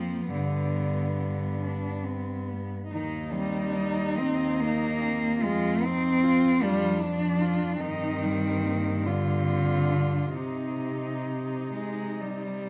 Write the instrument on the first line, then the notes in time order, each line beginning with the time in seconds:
cello
Already playing: F2 F3 A#3 C4
0.33 G2 D3 B3
1.62 D4
2.05 C4
2.48 B3
2.91 D#2 D#3 D#4
3.33 G3 C4
3.75 D#4
4.17 D#2 C4
4.60 A#3 D#4
5.01 C4
5.41 F2 G#3 C4 F4
5.83 C4 D#4
6.23 F4
6.62 F2 G3 D4 F4
7.01 F3 D4
7.41 F4
7.81 G2 D#3 C4 D#4
8.23 G3
8.64 A#3
9.06 D3 B3 F4
9.48 C4
9.91 D4
10.35 C3 D#4
11.74 G#3
12.20 G3